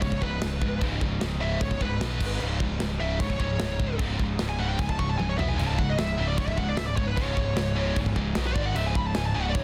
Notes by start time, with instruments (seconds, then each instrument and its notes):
Already playing: distorted electric guitar C#2 G#2 C#3
0.02 picked electric bass C#1, distorted electric guitar C#2 G#2, lead electric guitar C#5, kick, crash
0.12 kick
0.22 picked electric bass C#1, distorted electric guitar C#2 G#2, lead electric guitar B4, kick
0.42 picked electric bass C#1, distorted electric guitar C#2 G#2, snare, crash
0.62 picked electric bass C#1, distorted electric guitar C#2 G#2, kick
0.81 picked electric bass C#1, distorted electric guitar C#2 G#2 C#3, kick, crash
1.01 picked electric bass C#1, distorted electric guitar C#2 G#2, kick
1.20 picked electric bass C#1, distorted electric guitar C#2 G#2, snare, crash
1.40 distorted electric guitar C#2 G#2 C#3, lead electric guitar E5
1.61 picked electric bass C#1, distorted electric guitar C#2 G#2, lead electric guitar C#5, kick, crash
1.71 kick
1.80 picked electric bass C#1, distorted electric guitar C#2 G#2, lead electric guitar B4, kick
2.01 picked electric bass B1, distorted electric guitar B2 F#3 B3, snare, crash
2.20 picked electric bass G#1, distorted electric guitar G#2 D#3 G#3, kick, crash
2.40 picked electric bass C#1, distorted electric guitar C#2 G#2 C#3, crash
2.60 picked electric bass C#1, distorted electric guitar C#2 G#2, kick
2.80 picked electric bass C#1, distorted electric guitar C#2 G#2, snare, crash
3.00 picked electric bass C#1, distorted electric guitar C#2 G#2 C#3, lead electric guitar E5
3.20 picked electric bass C#1, distorted electric guitar C#2 G#2, lead electric guitar C#5, kick, crash
3.30 kick
3.39 picked electric bass C#1, distorted electric guitar C#2 G#2, lead electric guitar C#5, kick
3.60 picked electric bass C#1, distorted electric guitar C#2 G#2, snare, crash
3.79 picked electric bass C#1, distorted electric guitar C#2 G#2, kick
3.98 picked electric bass C#1, distorted electric guitar C#2 G#2 C#3, kick, crash
4.19 picked electric bass C#1, distorted electric guitar C#2 G#2, kick
4.39 picked electric bass C#1, distorted electric guitar C#2 G#2, snare, crash
4.49 lead electric guitar G#5
4.59 distorted electric guitar C#2 G#2 C#3, lead electric guitar F#5
4.69 lead electric guitar G5
4.79 picked electric bass C#1, distorted electric guitar C#2 G#2, lead electric guitar G#5, kick, crash
4.89 lead electric guitar A5, kick
4.99 picked electric bass C#1, distorted electric guitar C#2 G#2, lead electric guitar C#6, kick
5.09 lead electric guitar A5
5.18 picked electric bass C#1, distorted electric guitar C#2 G#2, lead electric guitar G#5, high tom
5.29 lead electric guitar C#5
5.37 picked electric bass B1, distorted electric guitar B2 F#3 B3, lead electric guitar E5, floor tom
5.48 lead electric guitar G#5
5.57 picked electric bass C#1, distorted electric guitar C#2 G#2 C#3, lead electric guitar G#5, crash
5.68 lead electric guitar A5
5.77 picked electric bass C#1, distorted electric guitar C#2 G#2, lead electric guitar F#5, kick
5.90 lead electric guitar D#5
5.98 picked electric bass C#1, distorted electric guitar C#2 G#2, lead electric guitar E5, snare, crash
6.17 picked electric bass C#1, distorted electric guitar C#2 G#2 C#3
6.28 lead electric guitar D5
6.38 picked electric bass C#1, distorted electric guitar C#2 G#2, lead electric guitar C#5, kick, crash
6.48 lead electric guitar E5, kick
6.57 picked electric bass C#1, distorted electric guitar C#2 G#2, lead electric guitar F#5, kick
6.68 lead electric guitar D5
6.77 picked electric bass C#1, distorted electric guitar C#2 G#2, lead electric guitar E5, snare, crash
6.87 lead electric guitar D5
6.96 picked electric bass C#1, distorted electric guitar C#2 G#2, lead electric guitar C#5, kick
7.07 lead electric guitar B4
7.16 picked electric bass C#1, distorted electric guitar C#2 G#2 C#3, lead electric guitar C#5, kick, crash
7.36 picked electric bass C#1, distorted electric guitar C#2 G#2, kick
7.56 picked electric bass C#1, distorted electric guitar C#2 G#2, snare, crash
7.75 distorted electric guitar C#2 G#2 C#3
7.96 picked electric bass C#1, distorted electric guitar C#2 G#2, kick, crash
8.06 kick
8.16 picked electric bass C#1, distorted electric guitar C#2 G#2, kick
8.35 picked electric bass B1, distorted electric guitar B2 F#3 B3, snare, crash
8.46 lead electric guitar B4
8.55 picked electric bass G#1, distorted electric guitar G#2 D#3 G#3, lead electric guitar D5, kick
8.66 lead electric guitar F#5
8.75 picked electric bass C#1, distorted electric guitar C#2 G#2 C#3, lead electric guitar E5, crash
8.86 lead electric guitar G#5
8.95 picked electric bass C#1, distorted electric guitar C#2 G#2, lead electric guitar B5, kick
9.07 lead electric guitar A5
9.15 picked electric bass C#1, distorted electric guitar C#2 G#2, lead electric guitar G#5, snare, crash
9.26 lead electric guitar A5
9.35 picked electric bass C#1, distorted electric guitar C#2 G#2 C#3, lead electric guitar G#5
9.42 lead electric guitar F#5
9.49 lead electric guitar D5
9.55 picked electric bass C#1, distorted electric guitar C#2 G#2, lead electric guitar C#5, kick, crash